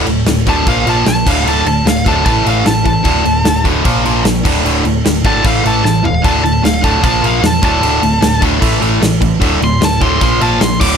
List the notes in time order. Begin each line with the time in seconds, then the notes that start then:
0.06 D1 D2 A2, crash
0.26 D1 D2 A2, snare, crash
0.46 D1 D2 A2 D3 A5, kick, crash
0.67 A#1 A#2 F3 A#3 F5, kick, crash
0.86 A#1 A#2 F3 A#3 A5, crash
1.06 A#1 A#2 F3 A5, snare, crash
1.26 D1 D2 A2 D3 F5, kick, crash
1.45 D1 D2 A2 D3 A5, crash
1.65 D1 D2 A2 A5, crash
1.85 D1 D2 A2 F5, snare, crash
2.05 D1 D2 A2 D3 A5, kick, crash
2.24 A1 A2 E3 A3 A5, kick, crash
2.44 A1 A2 E3 A3 F5, crash
2.65 A1 A2 E3 A5, snare, crash
2.85 A1 A2 E3 A5, kick, crash
3.03 D1 D2 A2 D3, kick, crash
3.24 D1 D2 A2, crash
3.45 D1 D2 A2, snare, crash
3.64 D1 D2 A2 D3, kick, crash
3.84 A#1 A#2 F3 A#3, kick, crash
4.05 A#1 A#2 F3 A#3, crash
4.24 A#1 A#2 F3, snare, crash
4.44 D1 D2 A2 D3, kick, crash
4.64 D1 D2 A2 D3, crash
4.84 D1 D2 A2, crash
5.05 D1 D2 A2, snare, crash
5.24 G#1 D2 A2 D3 A5, kick, crash
5.44 A1 A2 E3 A3 F5, kick, crash
5.64 A1 A2 E3 A3 A5, crash
5.83 A1 A2 E3 A5, snare
6.04 E1 A2 E3 F5, floor tom
6.24 D1 D2 A2 D3 A5, kick, crash
6.42 D1 D2 A2 A5, crash
6.64 D1 D2 A2 F5, snare, crash
6.83 D1 D2 A2 D3 A5, kick, crash
7.02 A#1 A#2 F3 A#3 A5, kick, crash
7.23 A#1 A#2 F3 A#3 F5, crash
7.43 E2 A#2 F3 A5, snare, crash
7.62 D1 D2 A2 D3 A5, kick, crash
7.82 D1 D2 A2 D3, crash
8.02 D1 D2 A2, crash
8.21 D1 D2 A2, snare, crash
8.41 D1 D2 A2 D3, kick, crash
8.60 A1 A2 E3 A3, kick, crash
8.81 A1 A2 E3 A3, crash
9.01 A1 A2 E3, snare, crash
9.21 A1 A2 E3, kick, crash
9.40 D1 D2 A2 D3, kick, crash
9.61 D1 D2 A2 C6, crash
9.81 D1 D2 A2 A5, snare, crash
10.01 D1 D2 A2 D3 C6, kick, crash
10.21 A#1 A#2 F3 A#3 C6, kick, crash
10.41 A#1 A#2 F3 A#3 A5, crash
10.61 A#1 A#2 F3 C6, snare, crash
10.80 D1 D2 A2 D3 D6, kick, crash